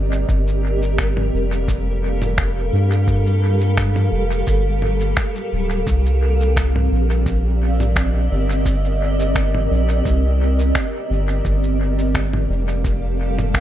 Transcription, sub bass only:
0.00 0.25 G1 medium
0.29 1.30 G1 loud
1.34 2.70 F1 medium
2.73 4.09 G2 medium
4.12 4.43 F1 medium
4.47 5.14 G1 medium
5.53 5.83 D1 medium
5.87 6.88 C2 loud
6.92 8.28 A#1 medium
8.32 9.68 G1 medium
9.71 10.02 A#1 medium
10.06 10.72 C2 loud
11.10 11.41 G1 medium
11.45 12.46 G1 loud
12.50 13.60 F1 medium

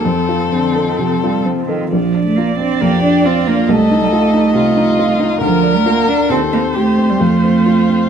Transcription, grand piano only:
0.05 0.98 F2 soft
0.29 0.67 F4 soft
0.52 0.90 C4 soft
0.76 1.14 A4 soft
0.98 1.37 C3 soft
1.24 1.61 F4 soft
1.45 1.84 C4 soft
1.69 1.93 A4 soft
1.93 2.79 A#1 soft
2.14 2.51 D4 soft
2.38 2.73 F4 soft
2.59 2.95 D4 soft
2.82 3.17 F2 soft
3.03 3.38 D4 soft
3.24 3.60 F4 soft
3.47 3.69 D4 soft
3.69 4.53 C2 soft
3.91 4.26 D#4 soft
4.12 4.47 F4 soft
4.34 4.68 D#4 soft
4.55 4.90 C3 soft
4.77 5.12 D#4 soft
4.99 5.34 F4 soft
5.20 5.42 D#4 soft
5.41 6.27 D2 soft
5.63 5.99 D4 soft
5.86 6.21 F4 soft
6.08 6.30 D4 soft
6.30 7.18 D#2 soft
6.52 6.89 C4 soft
6.76 7.12 G4 soft
6.98 7.21 C4 soft
7.21 8.09 F2 soft
7.44 7.80 C4 soft
7.66 8.03 F4 soft
7.89 8.09 C4 soft

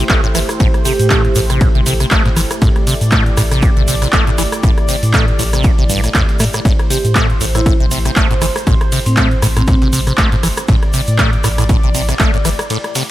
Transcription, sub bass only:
0.10 0.18 A1 medium
0.35 0.43 G1 medium
0.60 0.69 A1 loud
0.99 1.29 A2 loud
1.36 1.66 A1 medium
1.75 2.04 A1 medium
2.11 2.20 A1 medium
2.37 2.45 G1 medium
2.62 2.70 A1 loud
3.01 3.30 A2 loud
3.37 3.68 A1 medium
3.77 4.06 A1 medium
4.13 4.22 A1 medium
4.38 4.47 G1 medium
4.63 4.72 A1 loud
5.03 5.32 A2 loud
5.39 5.70 A1 medium
5.78 6.08 A1 loud
6.15 6.23 E2 medium
6.40 6.49 A2 loud
6.65 6.74 A1 loud
7.05 7.34 A2 loud
7.41 7.71 A1 medium
7.80 8.09 A1 medium
8.16 8.25 A1 medium
8.42 8.50 G1 medium
8.67 8.75 A1 loud
9.06 9.36 A2 loud
9.42 9.73 A1 medium
9.82 10.11 A1 medium
10.18 10.27 A1 medium
10.43 10.52 G1 medium
10.68 10.77 A1 loud
11.08 11.37 A2 loud
11.44 11.75 A1 medium
11.83 12.13 A1 medium
12.20 12.28 A1 medium
12.45 12.54 G1 medium

